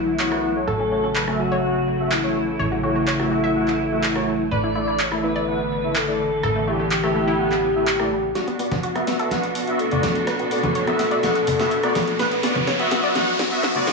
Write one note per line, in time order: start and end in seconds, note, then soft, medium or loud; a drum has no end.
0.00 0.65 B1 medium
0.00 0.64 D3 medium
0.00 4.48 F#3 medium
0.00 0.64 A3 medium
0.00 0.58 E4 loud
0.00 0.58 F#5 medium
0.19 0.30 B3 medium
0.19 0.30 F#4 medium
0.19 0.30 C#5 loud
0.19 clap loud
0.32 0.53 B3 medium
0.32 0.53 F#4 medium
0.32 0.53 F#5 medium
0.32 cross-stick medium
0.56 0.89 A3 medium
0.56 0.89 F#4 medium
0.56 0.89 C#5 medium
0.67 2.57 A1 medium
0.67 4.48 C#3 medium
0.67 6.39 A3 medium
0.67 1.30 A4 loud
0.67 0.74 A4 loud
0.80 0.86 C#4 medium
0.92 1.02 A3 medium
0.92 0.98 C#4 medium
0.92 1.02 F#4 medium
0.92 1.02 C#5 medium
1.04 1.10 C#4 medium
1.16 1.22 B4 medium
1.16 clap loud
1.28 1.61 A3 medium
1.28 1.34 C#4 medium
1.28 1.61 F#4 medium
1.28 1.61 E5 loud
1.28 cross-stick medium
1.39 1.46 C#4 medium
1.39 2.02 F#4 loud
1.52 2.50 C#5 medium
1.64 1.74 A3 medium
1.64 1.74 F#4 medium
1.64 1.74 F#5 loud
2.00 2.10 A3 medium
2.00 2.10 F#4 medium
2.00 2.10 E5 loud
2.11 2.74 E4 loud
2.11 2.74 E4 medium
2.11 clap loud
2.24 2.34 A3 medium
2.24 2.34 F#4 medium
2.24 2.34 C#5 loud
2.59 4.49 A1 medium
2.59 2.66 C#5 loud
2.72 2.78 F#4 medium
2.83 2.94 A3 medium
2.83 4.42 E4 loud
2.83 2.90 F#4 medium
2.83 2.94 F#4 medium
2.83 2.94 C#5 medium
2.96 3.02 F#4 medium
3.07 3.14 C#5 medium
3.07 clap loud
3.20 3.53 A3 medium
3.20 3.26 F#4 medium
3.20 3.53 F#4 medium
3.20 3.53 E5 loud
3.20 cross-stick medium
3.31 3.38 F#4 medium
3.44 4.42 E5 medium
3.56 3.66 A3 medium
3.56 3.67 F#4 medium
3.56 3.66 F#5 loud
3.68 clap soft
3.92 4.02 A3 medium
3.92 4.02 F#4 medium
3.92 4.02 E5 loud
4.04 clap loud
4.16 4.26 A3 medium
4.16 4.26 F#4 medium
4.16 4.26 C#5 loud
4.16 cross-stick medium
4.51 6.41 A1 medium
4.51 8.32 D3 medium
4.51 8.32 E3 medium
4.51 4.58 B4 loud
4.51 5.14 D5 loud
4.64 4.70 E4 medium
4.75 4.86 A3 medium
4.75 4.82 E4 medium
4.75 4.86 E4 medium
4.75 4.86 D5 medium
4.88 4.94 E4 medium
4.99 5.06 C#5 medium
4.99 clap loud
5.12 5.45 A3 medium
5.12 5.18 E4 medium
5.12 5.45 E4 medium
5.12 5.45 E5 loud
5.12 cross-stick medium
5.23 5.30 E4 medium
5.23 5.97 B4 loud
5.23 5.97 B4 medium
5.36 6.34 D5 medium
5.47 5.58 A3 medium
5.47 5.58 E4 medium
5.47 5.58 F#5 loud
5.84 5.94 A3 medium
5.84 5.94 E4 medium
5.84 5.94 E5 medium
5.96 6.69 A4 loud
5.96 6.69 A4 medium
5.96 clap loud
6.08 6.18 A3 medium
6.08 6.18 E4 medium
6.08 6.18 D5 loud
6.43 8.33 A1 medium
6.43 8.34 B3 medium
6.43 6.50 A4 loud
6.43 cross-stick medium
6.56 6.62 A3 medium
6.67 6.78 A3 medium
6.67 6.74 A3 medium
6.67 6.78 E4 medium
6.67 8.26 G4 loud
6.67 6.78 D5 medium
6.80 6.86 A3 medium
6.91 6.98 G4 medium
6.91 clap loud
7.04 7.37 A3 loud
7.04 7.10 A3 medium
7.04 7.37 E4 medium
7.04 7.37 E5 loud
7.04 cross-stick medium
7.15 7.22 A3 medium
7.28 8.26 E4 medium
7.39 7.50 A3 medium
7.39 7.50 E4 medium
7.39 7.50 F#5 loud
7.52 clap soft
7.76 7.86 A3 medium
7.76 7.86 E4 medium
7.76 7.86 E5 loud
7.87 clap loud
8.00 8.10 A3 medium
8.00 8.10 E4 medium
8.00 8.10 D5 loud
8.00 cross-stick medium
8.35 13.93 B2 medium
8.35 13.93 B3 medium
8.35 13.93 D4 medium
8.35 8.42 F#4 loud
8.35 13.93 F#4 medium
8.35 8.98 D5 loud
8.35 snare soft
8.35 closed hi-hat medium
8.35 riser medium
8.48 8.54 B3 medium
8.48 closed hi-hat soft
8.59 8.66 B3 medium
8.59 8.70 B3 medium
8.59 8.70 F#4 medium
8.59 8.70 D5 medium
8.59 open hi-hat loud
8.71 8.78 B3 medium
8.71 snare soft
8.71 closed hi-hat soft
8.71 high conga loud
8.71 low conga medium
8.83 8.90 F#4 medium
8.83 closed hi-hat medium
8.96 9.02 B3 medium
8.96 9.29 B3 loud
8.96 9.29 F#4 medium
8.96 9.29 E5 loud
8.96 cross-stick medium
8.96 closed hi-hat soft
9.07 9.14 B3 medium
9.07 9.70 B4 loud
9.07 snare medium
9.07 open hi-hat medium
9.19 10.18 A4 medium
9.19 closed hi-hat soft
9.31 9.42 B3 medium
9.31 9.42 F#4 medium
9.31 9.42 F#5 loud
9.31 snare medium
9.31 closed hi-hat medium
9.31 high conga medium
9.43 closed hi-hat soft
9.55 open hi-hat loud
9.67 9.78 B3 medium
9.67 9.78 F#4 medium
9.67 9.78 E5 loud
9.67 closed hi-hat soft
9.79 10.42 A4 loud
9.79 closed hi-hat medium
9.91 10.02 B3 medium
9.91 10.02 F#4 medium
9.91 10.02 D5 loud
9.91 closed hi-hat soft
9.91 low conga medium
10.03 snare medium
10.03 open hi-hat medium
10.03 high conga medium
10.15 closed hi-hat soft
10.27 10.34 B4 loud
10.27 cross-stick medium
10.27 snare medium
10.27 closed hi-hat medium
10.39 10.46 B3 medium
10.39 closed hi-hat soft
10.51 10.62 B3 medium
10.51 10.58 B3 medium
10.51 10.62 F#4 medium
10.51 12.10 A4 loud
10.51 10.62 D5 medium
10.51 open hi-hat loud
10.63 10.70 B3 medium
10.63 closed hi-hat soft
10.63 high conga loud
10.63 low conga medium
10.75 10.82 C#5 medium
10.75 closed hi-hat medium
10.87 11.21 B3 medium
10.87 10.94 B3 medium
10.87 11.21 F#4 medium
10.87 11.21 E5 loud
10.87 cross-stick medium
10.87 closed hi-hat soft
10.99 11.06 B3 medium
10.99 snare medium
10.99 open hi-hat loud
11.11 12.10 D5 medium
11.11 closed hi-hat soft
11.23 11.34 B3 medium
11.23 11.34 F#4 medium
11.23 11.34 F#5 loud
11.23 snare medium
11.23 closed hi-hat medium
11.23 high conga medium
11.35 closed hi-hat soft
11.47 open hi-hat loud
11.47 low conga medium
11.59 11.70 B3 medium
11.59 11.70 F#4 medium
11.59 11.70 E5 loud
11.59 snare medium
11.59 closed hi-hat soft
11.71 closed hi-hat medium
11.83 11.94 B3 medium
11.83 11.94 F#4 medium
11.83 11.94 D5 loud
11.83 cross-stick medium
11.83 closed hi-hat soft
11.95 snare medium
11.95 open hi-hat medium
11.95 high conga medium
12.08 closed hi-hat soft
12.19 12.82 B4 loud
12.19 12.26 B4 loud
12.19 snare medium
12.19 closed hi-hat medium
12.32 12.38 B3 medium
12.32 closed hi-hat soft
12.43 12.50 B3 medium
12.43 12.54 B3 medium
12.43 12.54 F#4 medium
12.43 12.54 D5 medium
12.43 snare medium
12.43 open hi-hat loud
12.55 12.62 B3 medium
12.55 closed hi-hat soft
12.55 high conga medium
12.55 low conga medium
12.67 12.74 C#5 medium
12.67 snare medium
12.67 closed hi-hat medium
12.79 12.86 B3 medium
12.79 13.13 B3 loud
12.79 13.13 F#4 medium
12.79 13.13 E5 loud
12.79 closed hi-hat soft
12.91 12.98 B3 medium
12.91 13.54 F#4 loud
12.91 snare medium
12.91 open hi-hat loud
13.04 13.93 D5 loud
13.04 closed hi-hat soft
13.15 13.26 B3 medium
13.15 13.26 F#4 medium
13.15 13.26 F#5 loud
13.15 snare medium
13.15 closed hi-hat medium
13.15 high conga medium
13.28 closed hi-hat soft
13.39 snare medium
13.39 open hi-hat loud
13.51 13.62 B3 medium
13.51 13.62 F#4 medium
13.51 13.62 E5 loud
13.51 closed hi-hat soft
13.63 13.93 F#4 medium
13.63 snare medium
13.63 closed hi-hat medium
13.75 13.86 B3 loud
13.75 13.86 F#4 medium
13.75 13.86 D5 loud
13.75 closed hi-hat soft
13.75 low conga medium
13.87 snare medium
13.87 open hi-hat loud
13.87 high conga medium